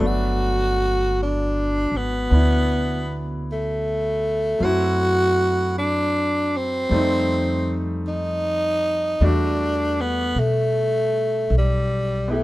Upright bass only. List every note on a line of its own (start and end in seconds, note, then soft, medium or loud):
0.00 1.88 G1 medium
1.92 2.29 G#1 medium
2.31 4.57 D2 medium
4.61 6.86 F#2 medium
6.91 9.16 F2 medium
9.21 10.32 E2 medium
10.36 11.47 B2 medium
11.50 12.44 B1 medium